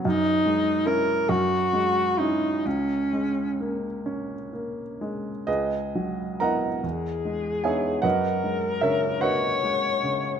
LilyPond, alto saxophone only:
\new Staff \with { instrumentName = "Alto saxophone" } { \time 6/8 \key cis \dorian \tempo 4. = 47 dis'4 ais'8 fis'4 dis'8 | cis'4. r4. | r4. gis'4. | ais'4. cis''4. | }